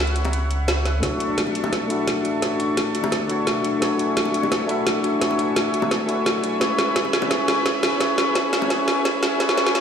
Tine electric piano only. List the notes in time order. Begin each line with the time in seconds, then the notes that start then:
Already playing: C#4 E4 G#4 B4 C#5
1.00 A3 D4 E4 F#4
1.05 C#5
1.88 A3 D4 E4 F#4
1.92 E5
2.40 A3 D4 E4 F#4
2.45 C#5
3.27 A3 D4 E4 F#4
3.32 C#5
3.80 A3 D4 E4 F#4
3.84 C#5
4.67 A3 D4 E4 F#4
4.71 E5
5.19 A3 D4 E4 F#4
5.24 C#5
6.06 A3 D4 E4 F#4
6.11 C#5
6.59 C#4 E4 G#4 B4
6.63 C#5
7.29 C#4 E4 G#4 B4
7.33 C#5
7.98 C#4 E4 G#4 B4
8.03 C#5
8.68 C#4 E4 G#4 B4
8.73 C#5
9.38 C#4 E4 G#4 B4
9.42 C#5
9.73 C#4 E4 G#4 B4
9.77 C#5